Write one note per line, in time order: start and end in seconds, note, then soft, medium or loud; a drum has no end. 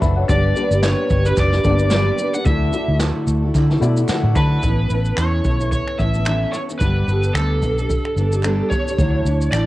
0.00 0.24 F#1 loud
0.00 0.28 A3 medium
0.00 0.31 A3 medium
0.00 0.28 D4 medium
0.00 0.32 F#4 medium
0.00 0.29 F#4 medium
0.00 0.31 A4 medium
0.00 0.30 A4 medium
0.00 0.16 B4 medium
0.00 0.30 D5 medium
0.00 0.16 E5 medium
0.00 0.16 F#5 medium
0.00 0.31 A5 medium
0.00 0.27 B5 medium
0.00 kick loud
0.00 shaker medium
0.16 0.43 C#5 medium
0.16 0.42 F#5 medium
0.27 0.51 G1 loud
0.27 0.54 G3 medium
0.27 0.50 B3 medium
0.27 0.50 D4 medium
0.27 0.55 D4 medium
0.27 0.50 G4 medium
0.27 0.57 G4 medium
0.27 0.57 B4 medium
0.27 0.83 D5 medium
0.27 0.51 D5 medium
0.27 kick loud
0.27 shaker medium
0.55 0.71 G3 medium
0.55 0.63 A#3 medium
0.55 1.38 D4 medium
0.55 0.71 D4 medium
0.55 1.39 G4 medium
0.55 0.71 G4 medium
0.55 1.39 B4 medium
0.55 0.69 B4 medium
0.55 shaker medium
0.61 1.41 B3 medium
0.70 0.93 G1 medium
0.70 0.83 D4 soft
0.70 0.83 G4 soft
0.70 0.83 B4 soft
0.70 shaker medium
0.83 1.25 G3 medium
0.83 1.26 D4 medium
0.83 1.26 G4 medium
0.83 1.24 B4 medium
0.83 1.27 C#5 loud
0.83 snare loud
0.83 clap medium
0.83 shaker medium
1.10 1.33 G1 loud
1.10 kick medium
1.10 shaker soft
1.25 1.39 D4 soft
1.25 1.39 G4 medium
1.25 1.38 B4 medium
1.25 shaker soft
1.37 1.60 F#1 medium
1.37 1.53 G3 medium
1.37 1.54 D4 medium
1.37 1.53 G4 medium
1.37 1.92 D5 medium
1.37 kick medium
1.37 clap medium
1.37 shaker medium
1.42 1.51 B4 medium
1.52 1.64 D4 soft
1.52 1.65 G4 soft
1.52 1.65 B4 medium
1.52 snare soft
1.63 2.09 G1 medium
1.63 1.80 G3 medium
1.63 1.71 A#3 medium
1.63 2.27 D4 medium
1.63 1.80 D4 medium
1.63 2.27 G4 medium
1.63 1.79 G4 medium
1.63 2.28 D5 medium
1.63 kick medium
1.63 shaker soft
1.68 2.30 B3 medium
1.68 1.78 B4 medium
1.79 1.90 D4 soft
1.79 1.91 G4 medium
1.79 1.92 B4 medium
1.79 shaker medium
1.90 2.17 G3 loud
1.90 2.18 D4 medium
1.90 2.19 G4 loud
1.90 2.19 B4 loud
1.90 2.32 D5 medium
1.90 snare loud
1.90 clap medium
1.90 shaker medium
2.18 2.34 G3 medium
2.18 2.34 D4 medium
2.18 2.33 G4 medium
2.18 2.32 B4 medium
2.18 shaker medium
2.33 2.47 D4 soft
2.33 2.46 G4 soft
2.33 2.46 B4 soft
2.33 2.46 F#5 medium
2.33 shaker medium
2.45 2.68 D2 loud
2.45 2.73 D3 medium
2.45 2.67 A3 medium
2.45 2.72 A3 medium
2.45 2.67 E4 medium
2.45 2.73 E4 medium
2.45 2.67 F#4 medium
2.45 2.74 F#4 medium
2.45 2.74 A4 medium
2.45 2.68 D5 medium
2.45 2.97 E5 medium
2.45 kick loud
2.45 shaker medium
2.71 3.55 A3 medium
2.71 2.88 A3 medium
2.71 3.55 E4 medium
2.71 2.89 E4 medium
2.71 3.56 F#4 medium
2.71 2.89 F#4 medium
2.71 3.56 D5 medium
2.71 shaker medium
2.76 2.87 A4 medium
2.88 3.10 D2 medium
2.88 3.01 E4 soft
2.88 3.01 F#4 soft
2.88 3.01 A4 soft
3.00 3.43 D3 medium
3.00 3.43 A3 medium
3.00 3.43 E4 medium
3.00 3.43 F#4 medium
3.00 3.41 A4 medium
3.00 snare loud
3.00 clap medium
3.00 shaker medium
3.27 3.50 D2 medium
3.27 shaker soft
3.42 3.55 E4 medium
3.42 3.56 F#4 medium
3.42 3.55 A4 medium
3.54 3.77 D3 medium
3.54 3.69 A3 medium
3.54 3.70 E4 medium
3.54 3.70 F#4 medium
3.54 3.69 A4 medium
3.54 kick medium
3.54 clap medium
3.54 shaker medium
3.70 3.82 E4 medium
3.70 3.83 F#4 medium
3.70 3.82 A4 medium
3.70 snare soft
3.80 4.04 B2 medium
3.80 4.43 A3 medium
3.80 3.97 A3 medium
3.80 4.44 E4 medium
3.80 3.98 E4 medium
3.80 4.44 F#4 medium
3.80 4.45 D5 loud
3.80 4.07 E5 medium
3.80 shaker soft
3.84 3.97 F#4 medium
3.84 3.96 A4 medium
3.97 4.10 E4 soft
3.97 4.10 F#4 medium
3.97 4.09 A4 medium
3.97 shaker soft
4.08 4.36 D3 loud
4.08 4.35 A3 medium
4.08 4.36 E4 loud
4.08 4.37 F#4 loud
4.08 4.37 A4 loud
4.08 4.34 F#5 medium
4.08 muted fingered electric bass stroke soft
4.08 snare loud
4.08 clap medium
4.08 shaker medium
4.24 4.34 A2 loud
4.35 4.58 D3 medium
4.35 4.63 A3 medium
4.35 4.64 E4 medium
4.35 4.64 F#4 medium
4.35 5.17 B4 medium
4.35 4.61 A5 medium
4.35 kick loud
4.35 shaker medium
4.39 4.65 A4 medium
4.63 4.85 A1 medium
4.63 4.91 A2 medium
4.63 4.91 E3 medium
4.63 4.88 B3 medium
4.63 4.90 C#4 medium
4.63 4.91 E4 medium
4.63 4.92 A4 medium
4.63 kick loud
4.63 shaker medium
4.89 5.13 A1 medium
4.89 5.17 B3 medium
4.89 5.17 C#4 medium
4.89 5.17 E4 medium
4.89 5.18 A4 medium
4.89 shaker soft
5.05 shaker soft
5.17 5.40 E2 medium
5.17 5.45 A2 medium
5.17 5.45 E3 medium
5.17 5.43 B3 medium
5.17 5.44 C#4 medium
5.17 5.45 E4 medium
5.17 5.46 A4 medium
5.17 5.68 C#5 medium
5.17 finger snap loud
5.17 clap medium
5.17 shaker medium
5.44 5.79 B1 medium
5.44 5.59 B3 soft
5.44 5.59 C#4 medium
5.44 5.59 E4 medium
5.44 5.57 A4 medium
5.44 kick medium
5.44 shaker soft
5.58 5.97 B3 soft
5.58 5.98 C#4 soft
5.58 5.99 E4 medium
5.58 5.98 A4 soft
5.58 shaker soft
5.72 6.00 C#5 medium
5.72 kick medium
5.72 shaker medium
5.88 finger snap soft
5.98 6.44 A1 medium
5.98 6.14 B3 medium
5.98 6.14 C#4 medium
5.98 6.14 E4 medium
5.98 6.13 A4 medium
5.98 6.55 E5 loud
5.98 kick medium
5.98 shaker soft
6.14 6.26 B3 soft
6.14 6.26 C#4 soft
6.14 6.27 E4 soft
6.14 6.26 A4 soft
6.14 shaker soft
6.26 6.54 A2 medium
6.26 6.54 E3 medium
6.26 6.51 B3 medium
6.26 6.53 C#4 medium
6.26 6.54 E4 medium
6.26 6.55 A4 medium
6.26 finger snap loud
6.26 clap medium
6.26 shaker medium
6.52 6.68 B3 soft
6.52 6.69 C#4 medium
6.52 6.69 E4 soft
6.52 6.59 C#5 medium
6.52 shaker medium
6.56 6.67 A4 soft
6.68 6.80 B3 soft
6.68 6.81 C#4 soft
6.68 6.81 E4 soft
6.68 6.81 A4 soft
6.68 shaker medium
6.79 7.03 G1 medium
6.79 7.08 G3 medium
6.79 7.06 B3 medium
6.79 7.08 D4 medium
6.79 7.09 G4 medium
6.79 7.09 A4 medium
6.79 7.36 B4 medium
6.79 kick loud
6.79 shaker medium
7.07 7.30 G1 medium
7.07 7.34 B3 medium
7.07 7.35 D4 medium
7.07 7.35 G4 medium
7.07 7.36 A4 medium
7.07 shaker soft
7.23 shaker soft
7.34 7.63 D2 medium
7.34 7.62 G3 medium
7.34 7.61 B3 medium
7.34 7.62 D4 medium
7.34 7.63 G4 medium
7.34 8.75 A4 medium
7.34 7.63 A4 medium
7.34 finger snap loud
7.34 clap medium
7.34 shaker medium
7.62 7.97 B1 medium
7.62 7.77 B3 medium
7.62 7.78 D4 medium
7.62 7.78 G4 medium
7.62 7.76 A4 medium
7.62 kick medium
7.62 shaker soft
7.77 8.16 D4 soft
7.77 8.17 G4 soft
7.77 8.17 A4 soft
7.77 shaker soft
7.90 kick medium
7.90 shaker medium
8.05 finger snap soft
8.16 8.61 G1 medium
8.16 8.31 B3 medium
8.16 8.32 D4 medium
8.16 8.32 G4 medium
8.16 8.30 A4 medium
8.16 shaker soft
8.31 8.44 D4 soft
8.31 8.44 G4 medium
8.31 8.44 A4 medium
8.31 shaker soft
8.43 8.71 G3 medium
8.43 8.69 B3 loud
8.43 8.70 D4 loud
8.43 8.71 G4 medium
8.43 8.72 A4 loud
8.43 finger snap loud
8.43 clap medium
8.43 shaker medium
8.70 8.86 B3 medium
8.70 8.86 D4 medium
8.70 8.86 G4 medium
8.70 8.84 A4 soft
8.70 9.51 C#5 medium
8.70 kick medium
8.70 shaker medium
8.86 8.99 D4 soft
8.86 8.99 G4 soft
8.86 8.98 A4 medium
8.86 shaker medium
8.99 9.21 D2 loud
8.99 9.26 D3 medium
8.99 9.26 F#3 medium
8.99 9.24 A3 medium
8.99 9.26 D4 medium
8.99 9.27 E4 medium
8.99 9.27 A4 medium
8.99 kick loud
8.99 shaker medium
9.25 9.48 D2 medium
9.25 9.52 A3 medium
9.25 9.53 D4 medium
9.25 9.53 E4 medium
9.25 shaker medium
9.29 9.53 A4 medium
9.41 shaker soft
9.51 9.66 A1 medium
9.51 9.66 D3 medium
9.51 9.66 F#3 medium
9.51 9.66 A3 medium
9.51 9.66 D4 medium
9.51 9.66 E4 medium
9.51 9.66 A4 medium
9.51 9.66 D5 loud
9.51 finger snap loud
9.51 clap medium
9.51 shaker medium